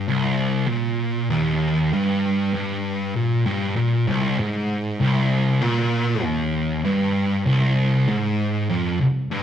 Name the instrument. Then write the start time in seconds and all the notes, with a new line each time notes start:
distorted electric guitar
0.08 C2
0.68 A#2
1.30 D#2
1.93 G2
2.54 G2
3.15 A#2
3.46 G2
3.76 A#2
4.07 C2
4.39 G#2
5.00 C2
5.61 A#2
6.23 D#2
6.85 G2
7.46 C2
8.08 G#2
8.69 F2
9.00 C2
9.31 G2